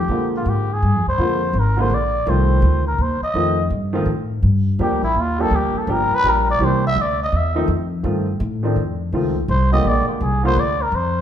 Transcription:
0.00 0.31 G4 medium
0.09 0.44 A#2 medium
0.09 0.64 D3 medium
0.09 0.64 F3 medium
0.09 0.65 G#3 medium
0.09 0.65 A#3 medium
0.09 0.65 F4 medium
0.36 0.51 F4 medium
0.46 0.81 G#2 medium
0.46 0.75 G4 medium
0.73 1.08 G#4 medium
0.82 0.94 G2 medium
0.94 1.06 F2 soft
1.06 1.18 D2 medium
1.06 1.61 C5 loud
1.18 1.53 F2 medium
1.18 1.39 D3 medium
1.18 1.40 F3 medium
1.18 1.40 G#3 medium
1.18 1.40 A#3 medium
1.18 1.40 F4 medium
1.53 1.89 G#1 medium
1.59 1.83 A#4 medium
1.77 1.89 D3 medium
1.77 1.89 F3 medium
1.77 1.90 G#3 medium
1.77 1.90 A#3 medium
1.77 1.90 F4 medium
1.81 1.96 C5 loud
1.90 2.25 A#1 medium
1.94 2.31 D5 medium
2.26 2.61 C2 medium
2.26 2.81 D#3 medium
2.26 2.81 F3 medium
2.26 2.82 A3 medium
2.26 2.82 C4 medium
2.26 2.82 F4 medium
2.26 2.87 C5 medium
2.62 2.98 D2 medium
2.87 3.03 A#4 medium
2.98 3.20 D#2 medium
2.98 3.23 C5 medium
3.21 3.69 D#5 loud
3.21 muted upright bass stroke soft
3.34 3.70 F2 medium
3.34 3.56 D#3 medium
3.34 3.56 F3 medium
3.34 3.56 A3 medium
3.34 3.56 C4 medium
3.34 3.56 F4 medium
3.70 4.05 G2 medium
3.93 4.06 D#3 medium
3.93 4.06 F3 medium
3.93 4.06 A3 medium
3.93 4.06 C4 medium
3.93 4.07 F4 medium
4.06 4.42 A2 medium
4.43 4.78 G2 medium
4.79 4.90 F2 medium
4.79 5.00 F3 medium
4.79 5.00 G3 medium
4.79 5.01 A#3 medium
4.79 5.01 D4 medium
4.79 5.01 G4 medium
4.79 5.03 G4 medium
4.90 5.02 D2 medium
5.02 5.14 A#1 medium
5.02 5.22 E4 loud
5.14 5.50 D#2 medium
5.21 5.43 F4 medium
5.39 5.85 F3 medium
5.39 5.86 G3 medium
5.39 5.86 A#3 medium
5.39 5.86 D4 medium
5.39 5.86 G4 medium
5.39 5.57 A4 loud
5.51 5.73 D2 medium
5.56 5.80 G4 medium
5.74 muted upright bass stroke soft
5.78 5.94 A4 medium
5.87 6.09 G1 medium
5.87 6.09 F3 medium
5.87 6.09 G3 medium
5.87 6.09 A#3 medium
5.87 6.09 D4 medium
5.87 6.09 G4 medium
5.92 6.17 A#4 medium
6.11 muted upright bass stroke soft
6.15 6.31 B4 loud
6.23 6.59 A#1 medium
6.23 6.44 F3 medium
6.23 6.45 G3 medium
6.23 6.45 A#3 medium
6.23 6.45 D4 medium
6.23 6.45 G4 medium
6.29 6.50 A#4 medium
6.51 6.66 D5 loud
6.59 6.95 C2 medium
6.59 6.81 E3 medium
6.59 6.81 G3 medium
6.59 6.81 A#3 medium
6.59 6.81 C4 medium
6.59 6.82 G4 medium
6.64 6.85 C5 medium
6.87 7.03 E5 loud
6.96 7.31 D2 medium
7.01 7.22 D5 medium
7.24 7.38 D#5 loud
7.32 7.67 E2 medium
7.36 7.71 E5 medium
7.55 7.67 D#3 medium
7.55 7.67 F3 medium
7.55 7.67 A3 medium
7.55 7.68 C4 medium
7.55 7.68 D#4 medium
7.68 8.03 F2 medium
8.03 8.39 G2 medium
8.03 8.24 D#3 medium
8.03 8.25 F3 medium
8.03 8.25 A3 medium
8.03 8.25 C4 medium
8.03 8.25 F4 medium
8.40 8.75 A2 loud
8.63 8.76 D#3 medium
8.63 8.77 F3 medium
8.63 8.77 A3 medium
8.63 8.77 C4 medium
8.63 8.78 D4 medium
8.76 9.11 F2 medium
9.12 9.48 C#2 medium
9.12 9.34 D#3 medium
9.12 9.34 F3 medium
9.12 9.34 A3 medium
9.12 9.34 C4 medium
9.12 9.34 F4 medium
9.48 9.84 C2 medium
9.48 9.71 C5 medium
9.72 10.18 D3 medium
9.72 10.18 F3 medium
9.72 10.19 G#3 medium
9.72 10.19 A#3 medium
9.72 10.19 G4 medium
9.72 9.89 D#5 loud
9.85 10.06 A#1 medium
9.85 10.08 D5 loud
10.07 10.24 F4 soft
10.07 muted upright bass stroke soft
10.21 10.55 C2 medium
10.21 10.45 G#4 medium
10.43 10.55 D3 medium
10.43 10.56 F3 medium
10.43 10.56 G#3 medium
10.43 10.56 A#3 medium
10.43 10.56 F4 medium
10.43 10.61 C5 loud
10.56 10.91 D2 medium
10.56 10.84 D5 loud
10.83 10.97 A#4 medium
10.92 11.21 F2 medium
10.92 11.21 C5 loud

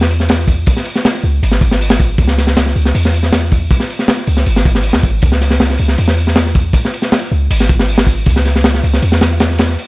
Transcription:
0.00 0.65 E2 medium
0.00 snare medium
0.10 open hi-hat medium
0.20 snare soft
0.29 snare loud
0.29 open hi-hat loud
0.39 snare soft
0.48 kick loud
0.48 open hi-hat medium
0.66 kick loud
0.66 open hi-hat medium
0.77 snare soft
0.85 open hi-hat medium
0.95 snare soft
1.05 snare loud
1.05 open hi-hat medium
1.15 snare soft
1.24 1.41 C#2 medium
1.43 2.17 G#1 medium
1.43 open hi-hat medium
1.51 snare soft
1.61 kick medium
1.61 open hi-hat medium
1.71 snare medium
1.81 open hi-hat medium
1.90 snare loud
2.00 kick loud
2.00 open hi-hat medium
2.18 2.74 C#2 loud
2.18 kick loud
2.18 open hi-hat medium
2.27 snare medium
2.38 snare soft
2.38 open hi-hat medium
2.47 snare medium
2.57 snare loud
2.57 open hi-hat loud
2.66 snare medium
2.76 2.93 C#2 medium
2.76 open hi-hat medium
2.85 snare soft
2.95 3.69 E2 medium
2.95 open hi-hat medium
3.05 snare medium
3.14 open hi-hat medium
3.23 snare soft
3.33 snare loud
3.33 open hi-hat medium
3.42 snare soft
3.51 kick medium
3.51 open hi-hat medium
3.71 kick loud
3.71 open hi-hat medium
3.80 snare medium
3.90 open hi-hat medium
3.99 snare soft
4.08 snare loud
4.08 open hi-hat medium
4.17 snare soft
4.27 4.45 C#2 medium
4.27 open hi-hat medium
4.37 snare soft
4.46 4.96 G#1 medium
4.46 open hi-hat medium
4.56 snare medium
4.65 kick loud
4.65 open hi-hat medium
4.75 snare medium
4.83 open hi-hat medium
4.93 5.03 E2 loud
4.93 snare loud
5.03 5.21 G#1 medium
5.03 kick loud
5.03 open hi-hat medium
5.22 5.78 C#2 loud
5.22 kick loud
5.22 open hi-hat medium
5.32 snare medium
5.41 snare soft
5.41 open hi-hat medium
5.50 snare medium
5.60 snare loud
5.60 open hi-hat medium
5.70 snare medium
5.78 5.97 C#2 medium
5.78 open hi-hat medium
5.88 snare soft
5.98 6.73 E2 medium
5.98 open hi-hat medium
6.08 snare medium
6.17 open hi-hat medium
6.27 snare soft
6.36 snare loud
6.36 open hi-hat loud
6.46 snare soft
6.55 kick loud
6.55 open hi-hat medium
6.73 kick loud
6.73 open hi-hat medium
6.85 snare soft
6.93 open hi-hat medium
7.02 snare soft
7.12 snare loud
7.12 open hi-hat medium
7.21 snare soft
7.32 7.49 C#2 medium
7.51 8.25 G#1 medium
7.51 open hi-hat loud
7.60 snare medium
7.69 kick loud
7.69 open hi-hat medium
7.79 snare medium
7.88 open hi-hat medium
7.98 snare loud
8.07 kick medium
8.07 open hi-hat medium
8.26 8.82 C#2 loud
8.26 kick loud
8.26 open hi-hat medium
8.36 snare medium
8.45 snare soft
8.45 open hi-hat medium
8.56 snare soft
8.64 snare loud
8.64 open hi-hat medium
8.74 snare medium
8.83 9.01 C#2 medium
8.83 open hi-hat medium
8.94 snare soft
9.02 9.77 E2 medium
9.02 open hi-hat medium
9.12 snare medium
9.21 snare loud
9.21 open hi-hat medium
9.31 snare soft
9.40 snare loud
9.40 open hi-hat medium
9.51 snare soft
9.58 snare loud
9.58 open hi-hat medium
9.69 snare soft
9.79 open hi-hat medium

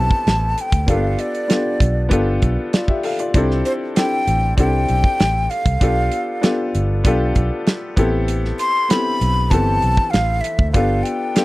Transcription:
0.00 0.90 B3 medium
0.00 0.90 C4 medium
0.00 0.90 E4 medium
0.00 0.89 G4 medium
0.00 0.89 G#4 soft
0.00 0.90 A4 medium
0.00 0.62 A5 loud
0.11 kick medium
0.27 0.53 A1 medium
0.27 snare loud
0.27 closed hi-hat medium
0.58 0.91 G5 medium
0.58 closed hi-hat medium
0.72 0.90 D2 medium
0.72 kick loud
0.72 closed hi-hat medium
0.86 1.15 G1 medium
0.86 0.94 A#3 medium
0.86 1.46 D4 medium
0.86 1.46 F4 medium
0.86 1.46 G4 medium
0.86 1.47 A4 medium
0.86 1.21 F5 medium
0.86 kick loud
0.86 closed hi-hat medium
0.93 1.46 B3 medium
1.19 2.12 D5 medium
1.19 closed hi-hat medium
1.35 closed hi-hat soft
1.48 2.07 B3 medium
1.48 2.07 D4 medium
1.48 2.07 F4 soft
1.48 2.08 G4 soft
1.48 2.08 A4 medium
1.48 snare medium
1.48 closed hi-hat medium
1.80 2.07 B1 medium
1.80 kick medium
1.80 closed hi-hat medium
2.09 2.38 G1 medium
2.09 3.26 B3 medium
2.09 3.27 D4 medium
2.09 2.72 F4 medium
2.09 2.73 G4 medium
2.09 2.74 A4 medium
2.09 kick medium
2.09 closed hi-hat loud
2.42 2.56 B1 medium
2.42 kick medium
2.42 closed hi-hat medium
2.73 2.88 F4 soft
2.73 2.88 D5 medium
2.73 snare loud
2.73 closed hi-hat medium
2.88 3.03 G4 medium
2.88 3.03 E5 medium
2.88 kick medium
3.03 3.19 A4 medium
3.03 3.19 F5 medium
3.03 open hi-hat medium
3.19 3.49 F4 soft
3.19 3.49 D5 medium
3.19 closed hi-hat medium
3.34 3.62 C2 medium
3.34 3.92 C4 medium
3.34 3.92 D4 medium
3.34 3.93 E4 medium
3.34 3.93 G4 medium
3.34 3.94 A4 medium
3.34 kick loud
3.34 closed hi-hat medium
3.51 snare soft
3.65 3.72 C5 medium
3.65 closed hi-hat medium
3.95 4.54 C4 medium
3.95 4.54 D4 medium
3.95 4.54 E4 soft
3.95 4.55 G4 medium
3.95 4.55 A4 medium
3.95 4.54 G5 medium
3.95 snare medium
3.95 closed hi-hat medium
4.27 4.54 A1 medium
4.27 closed hi-hat medium
4.57 4.85 C2 medium
4.57 5.73 C4 medium
4.57 5.73 D4 medium
4.57 5.74 E4 medium
4.57 5.74 G4 medium
4.57 5.75 A4 medium
4.57 5.52 G5 medium
4.57 kick medium
4.57 closed hi-hat medium
4.89 5.03 B1 medium
4.89 closed hi-hat medium
5.04 kick medium
5.20 5.47 A1 medium
5.20 snare loud
5.20 closed hi-hat medium
5.50 6.43 F5 medium
5.50 closed hi-hat medium
5.66 5.79 C2 medium
5.66 kick medium
5.66 closed hi-hat medium
5.80 6.08 B1 loud
5.80 6.39 B3 medium
5.80 6.39 D4 medium
5.80 6.39 F4 medium
5.80 6.40 G4 medium
5.80 6.40 A4 medium
5.80 kick loud
5.80 closed hi-hat medium
6.12 closed hi-hat medium
6.41 7.00 B3 medium
6.41 7.00 D4 medium
6.41 7.01 F4 medium
6.41 7.01 G4 medium
6.41 7.02 A4 medium
6.41 snare loud
6.41 closed hi-hat medium
6.75 7.01 G1 medium
6.75 closed hi-hat medium
7.04 7.32 B1 medium
7.04 7.95 B3 medium
7.04 7.97 D4 medium
7.04 7.98 F4 medium
7.04 7.97 G4 medium
7.04 7.98 A4 medium
7.04 kick medium
7.04 closed hi-hat medium
7.35 7.49 B1 medium
7.35 kick medium
7.35 closed hi-hat medium
7.67 snare loud
7.67 closed hi-hat medium
7.96 8.51 A1 medium
7.96 8.83 B3 medium
7.96 8.84 C4 medium
7.96 8.84 E4 medium
7.96 8.85 G4 medium
7.96 8.85 A4 medium
7.96 kick loud
7.96 closed hi-hat medium
8.28 closed hi-hat medium
8.45 snare soft
8.59 8.92 C6 loud
8.59 closed hi-hat medium
8.89 9.47 B3 medium
8.89 9.48 C4 medium
8.89 9.48 E4 medium
8.89 9.48 G4 medium
8.89 9.49 A4 medium
8.89 9.52 B5 loud
8.89 snare loud
8.89 closed hi-hat medium
9.21 9.53 B1 medium
9.21 closed hi-hat medium
9.50 9.78 G1 medium
9.50 10.67 E3 medium
9.50 10.66 B3 medium
9.50 10.67 C4 medium
9.50 10.68 G4 medium
9.50 10.68 A4 medium
9.50 10.12 A5 loud
9.50 kick medium
9.50 closed hi-hat medium
9.82 9.96 B1 medium
9.82 closed hi-hat medium
9.97 kick medium
10.10 10.40 A1 medium
10.10 10.42 F5 medium
10.10 snare loud
10.10 closed hi-hat medium
10.41 10.71 E5 medium
10.41 closed hi-hat medium
10.59 10.72 D2 medium
10.59 kick loud
10.72 11.01 G1 loud
10.72 11.32 B3 medium
10.72 11.32 D4 medium
10.72 11.32 F4 medium
10.72 11.33 G4 medium
10.72 11.05 F5 medium
10.72 kick loud
10.72 closed hi-hat medium
10.77 11.33 A4 medium
11.03 11.45 G5 medium
11.03 closed hi-hat medium
11.35 11.45 B3 medium
11.35 11.45 D4 medium
11.35 11.45 F4 soft
11.35 11.45 G4 medium
11.35 11.45 A4 medium
11.35 snare medium
11.35 closed hi-hat medium

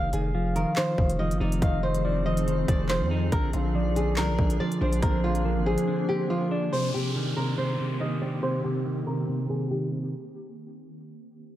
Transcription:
0.00 0.12 F1 loud
0.00 0.12 D#3 medium
0.00 6.69 F3 medium
0.00 3.29 C4 medium
0.00 3.29 D#4 medium
0.00 6.69 G#4 medium
0.13 0.65 F1 loud
0.13 0.34 D#3 medium
0.13 0.53 G#4 medium
0.13 closed hi-hat medium
0.34 1.18 F3 medium
0.34 1.15 F5 medium
0.56 0.76 D#3 medium
0.56 0.72 A#4 medium
0.56 closed hi-hat medium
0.76 0.97 D#3 medium
0.76 1.17 C5 loud
0.76 snare loud
0.76 clap loud
0.76 closed hi-hat medium
0.98 1.32 F1 loud
0.98 1.61 D#3 medium
0.98 kick loud
1.10 closed hi-hat medium
1.19 2.04 F3 medium
1.19 1.36 D#5 medium
1.31 1.40 G1 loud
1.31 closed hi-hat medium
1.40 1.61 F1 loud
1.40 2.47 D#4 medium
1.40 1.58 D5 medium
1.52 closed hi-hat medium
1.62 2.64 F1 loud
1.62 1.82 D#3 medium
1.62 2.02 D#5 loud
1.62 1.79 F5 medium
1.62 kick loud
1.62 closed hi-hat medium
1.83 2.25 D#3 medium
1.83 2.23 C5 medium
1.95 closed hi-hat medium
2.04 2.88 F3 medium
2.04 2.25 D5 medium
2.26 2.46 D#3 medium
2.26 3.28 C5 loud
2.26 2.66 D#5 medium
2.37 closed hi-hat medium
2.47 2.68 D#3 medium
2.47 closed hi-hat medium
2.68 3.02 F1 loud
2.68 3.32 D#3 medium
2.68 2.85 D5 medium
2.68 kick loud
2.68 closed hi-hat medium
2.89 3.32 F3 medium
2.89 3.06 C5 medium
2.89 snare loud
2.89 clap loud
2.89 closed hi-hat medium
3.01 3.31 F2 loud
3.11 3.32 D#4 medium
3.32 3.53 A#1 loud
3.32 3.52 D3 loud
3.32 6.69 A#3 medium
3.32 6.69 D4 medium
3.32 3.49 A#4 medium
3.32 kick loud
3.32 closed hi-hat medium
3.53 4.19 A#1 loud
3.53 3.95 D3 medium
3.53 3.94 F4 medium
3.53 closed hi-hat medium
3.75 4.59 F3 medium
3.75 4.56 D5 loud
3.96 4.16 D3 medium
3.96 4.13 G#4 medium
3.96 closed hi-hat medium
4.17 4.30 C2 medium
4.17 4.37 D3 loud
4.17 4.57 A#4 loud
4.17 snare loud
4.17 clap loud
4.17 closed hi-hat medium
4.29 4.38 A#1 loud
4.38 4.59 A#1 loud
4.38 5.01 D3 medium
4.38 kick loud
4.50 closed hi-hat medium
4.60 5.44 F3 medium
4.60 4.77 D5 medium
4.72 closed hi-hat medium
4.81 5.02 A#1 loud
4.81 5.87 D4 medium
4.81 4.98 C5 medium
4.93 closed hi-hat medium
5.02 5.58 A#1 loud
5.02 5.23 D3 medium
5.02 5.19 A#4 medium
5.02 5.42 C5 loud
5.02 kick loud
5.02 closed hi-hat medium
5.24 5.65 D3 medium
5.24 5.64 F4 medium
5.35 closed hi-hat medium
5.45 6.29 F3 medium
5.45 5.65 A#4 medium
5.56 5.76 G#1 loud
5.66 5.86 D3 medium
5.66 6.06 G#4 medium
5.66 6.47 C5 loud
5.78 closed hi-hat medium
5.88 6.08 D3 medium
6.09 6.73 D3 medium
6.09 6.25 G4 medium
6.30 6.72 F3 medium
6.30 6.47 F4 medium
6.51 6.73 D4 medium
6.51 6.72 D5 medium
6.72 6.93 C3 medium
6.72 10.10 D#3 medium
6.72 10.10 A#3 medium
6.72 10.10 C4 medium
6.72 10.10 G4 medium
6.72 6.89 C5 medium
6.72 downlifter medium
6.94 7.35 C3 medium
6.94 7.34 G4 medium
7.15 7.99 D#3 medium
7.37 7.57 C3 medium
7.37 7.53 A#4 medium
7.58 7.78 C3 medium
7.58 7.98 C5 medium
7.79 8.42 C3 medium
8.00 8.84 D#3 medium
8.00 8.17 D#5 medium
8.22 9.28 C4 medium
8.22 8.38 D5 medium
8.43 8.63 C3 medium
8.43 8.60 C5 medium
8.64 9.05 C3 medium
8.64 9.04 G4 medium
8.85 9.69 D#3 medium
9.07 9.27 C3 medium
9.07 9.47 A#4 medium
9.28 9.48 C3 medium
9.49 10.13 C3 medium
9.49 9.66 G#4 medium
9.71 10.13 D#3 medium
9.71 9.87 G4 medium
9.92 10.13 C4 medium

